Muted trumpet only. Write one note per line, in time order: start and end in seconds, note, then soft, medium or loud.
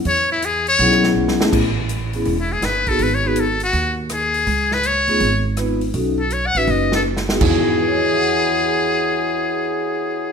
0.08 0.29 C#5 medium
0.32 0.47 E4 medium
0.45 0.68 G#4 medium
0.68 1.13 C#5 medium
2.41 2.54 E4 medium
2.52 2.67 G#4 medium
2.65 2.90 B4 medium
2.89 3.04 A4 medium
3.03 3.16 B4 medium
3.14 3.29 C#5 medium
3.27 3.42 B4 medium
3.40 3.63 A4 medium
3.64 3.97 F#4 medium
4.14 4.75 G#4 medium
4.73 4.88 B4 medium
4.87 5.46 C#5 medium
6.20 6.34 A4 medium
6.33 6.48 C#5 medium
6.46 6.59 F#5 medium
6.58 6.72 E5 medium
6.70 6.94 D#5 medium
6.95 7.02 A4 medium
7.43 10.32 G#4 medium